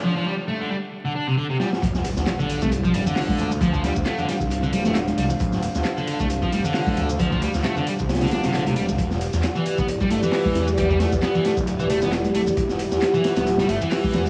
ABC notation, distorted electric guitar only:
X:1
M:4/4
L:1/16
Q:"Swing 16ths" 1/4=134
K:Dm
V:1 name="Distorted electric guitar" clef=bass
F, F, G, z A, D, G, z2 D, D C, D, C, G, z | z4 z D,2 A, z F, G, D,4 z | F, F, G, z A, D, G, z2 D, G, A, z2 G, z | z4 z D,2 A, z F, G, D,4 z |
F, F, G, z A, D, G, z2 D, D C, D, C, G, z | z4 z E,2 =B, z G, A, E,4 z | G, G, A, z =B, E, A, z2 E, A, B, z2 A, z | z4 z E,2 =B, z G, A, E,4 z |]